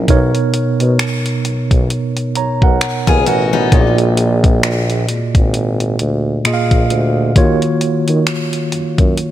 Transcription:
Already playing: F#3 E4 G#4
0.08 B1 B2 B3 D#4 A#4 C#5, kick, closed hi-hat
0.35 closed hi-hat
0.54 B2, closed hi-hat
0.80 B2, closed hi-hat
0.99 finger snap, closed hi-hat
1.26 closed hi-hat
1.45 B1, closed hi-hat
1.71 B1, kick, closed hi-hat
1.90 closed hi-hat
2.17 closed hi-hat
2.35 B1 C#5 A#5, closed hi-hat
2.62 B1 A#4 F#5, kick
2.81 finger snap, closed hi-hat
3.07 D#2 F4 G#4 B4 G#5, kick, closed hi-hat
3.26 A1 D#4 F#4 A#4 F#5, closed hi-hat
3.53 B3 D#4 F#4 D#5
3.72 A#1 A#2 A#3 F4 G#4 C#5, kick, closed hi-hat
3.81 D5
3.98 closed hi-hat
4.17 closed hi-hat
4.44 kick, closed hi-hat
4.63 finger snap, closed hi-hat
4.90 closed hi-hat
5.09 G#1, closed hi-hat
5.35 G#1, kick, closed hi-hat
5.54 closed hi-hat
5.80 closed hi-hat
5.99 D2, closed hi-hat
6.44 A#2 A#3 F4 G#4 D#5, finger snap, closed hi-hat
6.54 F5
6.71 A#1, kick, closed hi-hat
6.90 D2, closed hi-hat
7.35 D#2 D#3 A#3 F4 F#4 C#5, kick, closed hi-hat
7.62 closed hi-hat
7.81 D#3, closed hi-hat
8.08 D#3, closed hi-hat
8.27 finger snap, closed hi-hat
8.53 closed hi-hat
8.72 F#2, closed hi-hat
8.98 F#2, kick, closed hi-hat
9.18 closed hi-hat

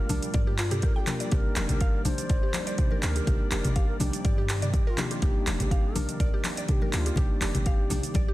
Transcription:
Already playing: A#2 G3 A3 A#3 D4 F4 G4 A#4 D5
0.09 A#1 D4, open hi-hat, high conga, low conga, shaker
0.23 closed hi-hat, shaker
0.34 G2 D5, kick, closed hi-hat, high conga, shaker
0.47 G4
0.58 F4, clap, open hi-hat, shaker
0.71 A#3 D4 F4 G4 A4, closed hi-hat, mid tom, shaker
0.82 G4 A#4, kick, closed hi-hat, shaker
0.96 A4 G5
1.00 G4
1.07 A#3 D4 F4 A#4, clap, open hi-hat, mid tom, high conga, shaker
1.20 D5, closed hi-hat, shaker
1.31 G1 C3 D#3 A#3 D4 D#4 G4 C5, kick, closed hi-hat, low conga, shaker
1.37 A#4
1.56 F1 G4, clap, open hi-hat, high conga, shaker
1.69 G1 A#4, closed hi-hat, low conga, shaker
1.81 F5, kick, closed hi-hat, shaker
2.05 A#1 D4 C5, open hi-hat, high conga, low conga, shaker
2.18 closed hi-hat, shaker
2.29 G1 D5, kick, closed hi-hat, shaker
2.43 G4
2.53 clap, open hi-hat, high conga, shaker
2.67 D5, closed hi-hat, shaker
2.78 A#3 D4 D#4 G4, kick, closed hi-hat, mid tom, shaker
2.91 A#4, high conga
3.02 D2 C5, clap, open hi-hat, shaker
3.07 A#4
3.16 G4, closed hi-hat, shaker
3.27 G1 A#3 D4 D#4 G4, kick, closed hi-hat, low conga, shaker
3.51 F1 G4 A#4, clap, open hi-hat, high conga, shaker
3.65 G1, closed hi-hat, mid tom, low conga, shaker
3.75 G4 F5, kick, closed hi-hat, shaker
3.88 A#4
3.99 A#1 D4 G4, open hi-hat, high conga, low conga, shaker
4.13 closed hi-hat, shaker
4.24 G2 D5, kick, closed hi-hat, high conga, shaker
4.38 G4
4.49 clap, open hi-hat, shaker
4.62 D5, closed hi-hat, mid tom, shaker
4.73 G4, kick, closed hi-hat, shaker
4.86 F4 G4 A#4
4.97 A#3 D4 D#4 G4, clap, open hi-hat, mid tom, high conga, shaker
5.11 G4, closed hi-hat, shaker
5.22 G1 A#3 D4 D#4 G4, kick, closed hi-hat, low conga, shaker
5.47 F1 G4, clap, open hi-hat, high conga, shaker
5.60 G1 G4, closed hi-hat, low conga, shaker
5.71 F5, kick, closed hi-hat, shaker
5.95 A#1 D4 A#4, open hi-hat, high conga, low conga, shaker
6.09 closed hi-hat, shaker
6.20 G1 D5, kick, closed hi-hat, shaker
6.34 G4
6.44 clap, open hi-hat, high conga, shaker
6.57 D5, closed hi-hat, shaker
6.69 A#3 D4 D#4 G4 A4, kick, closed hi-hat, mid tom, shaker
6.82 A#4, high conga
6.93 D2 F4 G4, clap, open hi-hat, shaker
7.06 G4, closed hi-hat, shaker
7.16 G1 A#3 D4 D#4 G4, kick, closed hi-hat, low conga, shaker
7.41 F1 G4, clap, open hi-hat, high conga, shaker
7.55 G1, closed hi-hat, mid tom, low conga, shaker
7.66 F5, kick, closed hi-hat, shaker
7.90 A#1 D4, open hi-hat, high conga, low conga, shaker
8.03 closed hi-hat, high conga, shaker
8.14 G1 D5, kick, closed hi-hat, high conga, shaker
8.28 G4

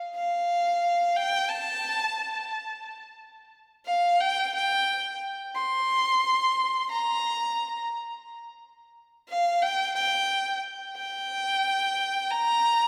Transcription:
0.15 F5
1.16 G5
1.49 A5
3.86 F5
4.20 G5
4.55 G5
5.54 C6
6.91 A#5
9.29 F5
9.62 G5
9.95 G5
10.96 G5
12.30 A#5

